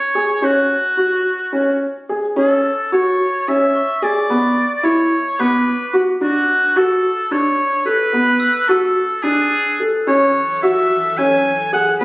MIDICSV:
0, 0, Header, 1, 5, 480
1, 0, Start_track
1, 0, Key_signature, 3, "minor"
1, 0, Tempo, 551471
1, 371, Time_signature, 7, 3, 24, 8
1, 10485, End_track
2, 0, Start_track
2, 0, Title_t, "Glockenspiel"
2, 0, Program_c, 0, 9
2, 2308, Note_on_c, 0, 93, 42
2, 2926, Note_off_c, 0, 93, 0
2, 3266, Note_on_c, 0, 85, 54
2, 3880, Note_off_c, 0, 85, 0
2, 4693, Note_on_c, 0, 86, 53
2, 5306, Note_off_c, 0, 86, 0
2, 7309, Note_on_c, 0, 88, 54
2, 7930, Note_off_c, 0, 88, 0
2, 8048, Note_on_c, 0, 90, 46
2, 8194, Note_on_c, 0, 93, 42
2, 8665, Note_off_c, 0, 90, 0
2, 8799, Note_off_c, 0, 93, 0
2, 10485, End_track
3, 0, Start_track
3, 0, Title_t, "Oboe"
3, 0, Program_c, 1, 68
3, 0, Note_on_c, 1, 73, 93
3, 390, Note_on_c, 1, 66, 70
3, 403, Note_off_c, 1, 73, 0
3, 1588, Note_off_c, 1, 66, 0
3, 2073, Note_on_c, 1, 69, 72
3, 2518, Note_off_c, 1, 69, 0
3, 2550, Note_on_c, 1, 73, 84
3, 3032, Note_on_c, 1, 76, 87
3, 3045, Note_off_c, 1, 73, 0
3, 3507, Note_on_c, 1, 74, 82
3, 3520, Note_off_c, 1, 76, 0
3, 4219, Note_on_c, 1, 73, 82
3, 4232, Note_off_c, 1, 74, 0
3, 4698, Note_on_c, 1, 71, 89
3, 4711, Note_off_c, 1, 73, 0
3, 5232, Note_off_c, 1, 71, 0
3, 5418, Note_on_c, 1, 66, 87
3, 5899, Note_on_c, 1, 69, 90
3, 5912, Note_off_c, 1, 66, 0
3, 6372, Note_on_c, 1, 73, 95
3, 6385, Note_off_c, 1, 69, 0
3, 6836, Note_off_c, 1, 73, 0
3, 6841, Note_on_c, 1, 71, 99
3, 7557, Note_on_c, 1, 69, 87
3, 7570, Note_off_c, 1, 71, 0
3, 8034, Note_on_c, 1, 68, 88
3, 8047, Note_off_c, 1, 69, 0
3, 8580, Note_off_c, 1, 68, 0
3, 8773, Note_on_c, 1, 73, 90
3, 9218, Note_off_c, 1, 73, 0
3, 9245, Note_on_c, 1, 76, 90
3, 9728, Note_on_c, 1, 80, 94
3, 9741, Note_off_c, 1, 76, 0
3, 10208, Note_off_c, 1, 80, 0
3, 10213, Note_on_c, 1, 78, 88
3, 10320, Note_off_c, 1, 78, 0
3, 10444, Note_on_c, 1, 71, 85
3, 10485, Note_off_c, 1, 71, 0
3, 10485, End_track
4, 0, Start_track
4, 0, Title_t, "Felt piano"
4, 0, Program_c, 2, 0
4, 131, Note_on_c, 2, 68, 62
4, 261, Note_off_c, 2, 68, 0
4, 365, Note_on_c, 2, 61, 73
4, 627, Note_off_c, 2, 61, 0
4, 845, Note_on_c, 2, 66, 62
4, 1109, Note_off_c, 2, 66, 0
4, 1327, Note_on_c, 2, 61, 66
4, 1593, Note_off_c, 2, 61, 0
4, 1822, Note_on_c, 2, 68, 61
4, 1954, Note_off_c, 2, 68, 0
4, 2057, Note_on_c, 2, 61, 83
4, 2321, Note_off_c, 2, 61, 0
4, 2543, Note_on_c, 2, 66, 76
4, 2805, Note_off_c, 2, 66, 0
4, 3028, Note_on_c, 2, 61, 78
4, 3288, Note_off_c, 2, 61, 0
4, 3501, Note_on_c, 2, 68, 76
4, 3632, Note_off_c, 2, 68, 0
4, 3740, Note_on_c, 2, 59, 85
4, 3999, Note_off_c, 2, 59, 0
4, 4206, Note_on_c, 2, 64, 86
4, 4468, Note_off_c, 2, 64, 0
4, 4695, Note_on_c, 2, 59, 88
4, 4953, Note_off_c, 2, 59, 0
4, 5164, Note_on_c, 2, 66, 73
4, 5295, Note_off_c, 2, 66, 0
4, 5405, Note_on_c, 2, 62, 80
4, 5665, Note_off_c, 2, 62, 0
4, 5883, Note_on_c, 2, 66, 88
4, 6143, Note_off_c, 2, 66, 0
4, 6363, Note_on_c, 2, 62, 79
4, 6622, Note_off_c, 2, 62, 0
4, 6836, Note_on_c, 2, 69, 72
4, 6967, Note_off_c, 2, 69, 0
4, 7076, Note_on_c, 2, 59, 78
4, 7336, Note_off_c, 2, 59, 0
4, 7561, Note_on_c, 2, 66, 78
4, 7821, Note_off_c, 2, 66, 0
4, 8037, Note_on_c, 2, 62, 78
4, 8300, Note_off_c, 2, 62, 0
4, 8529, Note_on_c, 2, 69, 62
4, 8658, Note_off_c, 2, 69, 0
4, 8764, Note_on_c, 2, 61, 77
4, 9026, Note_off_c, 2, 61, 0
4, 9250, Note_on_c, 2, 66, 82
4, 9511, Note_off_c, 2, 66, 0
4, 9734, Note_on_c, 2, 61, 85
4, 9994, Note_off_c, 2, 61, 0
4, 10207, Note_on_c, 2, 68, 72
4, 10339, Note_off_c, 2, 68, 0
4, 10450, Note_on_c, 2, 59, 85
4, 10485, Note_off_c, 2, 59, 0
4, 10485, End_track
5, 0, Start_track
5, 0, Title_t, "String section"
5, 0, Program_c, 3, 48
5, 8764, Note_on_c, 3, 42, 59
5, 8765, Note_on_c, 3, 69, 73
5, 8770, Note_on_c, 3, 52, 62
5, 10434, Note_off_c, 3, 42, 0
5, 10435, Note_off_c, 3, 69, 0
5, 10438, Note_off_c, 3, 52, 0
5, 10451, Note_on_c, 3, 40, 73
5, 10451, Note_on_c, 3, 68, 70
5, 10453, Note_on_c, 3, 50, 63
5, 10485, Note_off_c, 3, 40, 0
5, 10485, Note_off_c, 3, 50, 0
5, 10485, Note_off_c, 3, 68, 0
5, 10485, End_track
0, 0, End_of_file